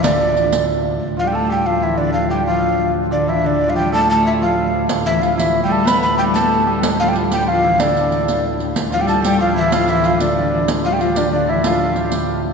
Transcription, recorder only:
X:1
M:6/8
L:1/16
Q:3/8=124
K:Ddor
V:1 name="Recorder"
d8 z4 | z2 f g a2 g2 f2 e2 | d2 f2 g2 f6 | z2 d2 e2 d3 f g2 |
a2 a2 e2 f6 | z2 e2 f2 e3 g a2 | b2 b2 g2 a6 | z2 f g z2 g2 f4 |
d8 z4 | z2 f g a2 g2 f2 e2 | f2 e2 f2 d6 | z2 f g f2 d2 d2 e2 |
f6 z6 |]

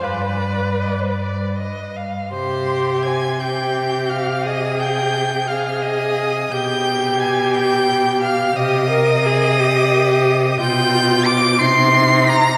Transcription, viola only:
X:1
M:6/8
L:1/16
Q:3/8=58
K:Cm
V:1 name="Viola"
=B8- B z3 | G6 G6 | A6 A6 | G12 |
G2 B2 A2 G6 | F6 E6 |]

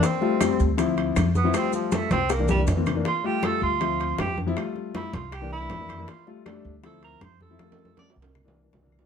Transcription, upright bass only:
X:1
M:4/4
L:1/8
Q:1/4=159
K:F
V:1 name="Upright bass" clef=bass
z3 D,,3 F,,2 | z3 C,,3 F,,2 | z3 D,,3 F,,2 | z3 C,,3 F,,2 |
z3 D,,3 F,,2 | z3 C,,3 C,,2 |]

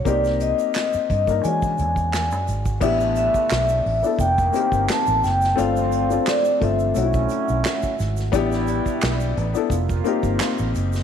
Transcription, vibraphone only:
X:1
M:4/4
L:1/8
Q:"Swing 16ths" 1/4=87
K:Em
V:1 name="Vibraphone"
d _e2 e ^g3 z | [K:Am] e e3 g2 a g | f2 d e4 z | z8 |]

